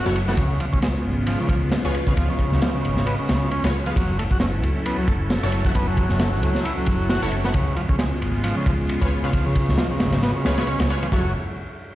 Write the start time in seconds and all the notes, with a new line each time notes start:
Already playing: F#3 C#4 F#4 A4
0.06 F#1 E4 F#4 A4 C#5, snare
0.16 ride
0.28 B3 E4 F#4 A4 F#5, snare
0.37 C#2 C#3 G#3 B3 F4, kick, ride
0.60 F3, ride
0.73 C#2 C#4, kick
0.82 G#3, snare, ride
1.05 G#1
1.27 F3, ride
1.40 C#3
1.49 C#2 F3, kick, ride
1.72 snare, ride
1.85 C#2 F4 G#4 B4 C#5
1.95 ride
2.07 C#3 F4 G#4 B4 F5, kick
2.17 C#2 F3, kick, ride
2.30 C#3
2.39 kick, ride
2.52 C#2, snare
2.62 F3, snare, ride
2.74 C#3
2.84 G#1, ride
2.97 snare
3.06 B3, ride
3.19 C#3
3.29 C#2, snare, ride
3.51 C#4, ride
3.64 C#2 F4 G#4 B4 C#5, snare, ride
3.86 F3 F4 G#4 B4 F5, ride
3.96 F#1 F#3 C#4 E4 A4, kick, ride
4.19 A3, ride
4.31 F#1 F#4, kick
4.40 C#4, snare, ride
4.63 C#2, ride
4.86 B3, ride
4.98 F#3
5.08 F#1 A3, kick, ride
5.30 snare, ride
5.43 F#1 E4 F#4 A4 C#5
5.52 ride
5.65 F#3 E4 F#4 A4 F#5, kick
5.75 F#1 B3, kick, ride
5.88 F#3
5.97 kick, ride
6.09 F#1, snare
6.19 A3, snare, ride
6.33 F#3
6.42 C#2, ride
6.55 snare
6.65 E4, ride
6.77 F#3
6.86 F#1, kick, ride
7.09 F#4, snare, ride
7.22 F#1 E4 F#4 A4 C#5, snare
7.31 ride
7.44 B3 E4 F#4 A4 F#5, snare
7.54 C#2 C#3 G#3 B3 F4, kick, ride
7.76 F3, ride
7.89 C#2 C#4, kick
7.99 G#3, snare, ride
8.22 G#1, ride
8.44 F3, ride
8.57 C#3
8.66 C#2 F3, kick, ride
8.89 ride
9.01 C#2 F4 G#4 B4 C#5, kick, ride
9.24 C#3 F4 G#4 B4 F5, ride
9.33 C#2 F3, kick, ride
9.46 C#3
9.55 kick, ride
9.69 C#2, snare
9.78 F3, snare, ride
9.91 C#3
10.00 G#1, snare, ride
10.12 snare, ride
10.23 B3, snare, ride
10.36 C#3
10.45 C#2 F4 G#4 B4 C#5, snare, ride
10.58 F4 G#4 B4 C#5, snare, ride
10.67 C#4, ride
10.80 C#2, snare, ride
10.90 F4 G#4 B4 C#5
11.03 F3, ride
11.12 F#1 F#3 E4 F#4 A4 C#5, kick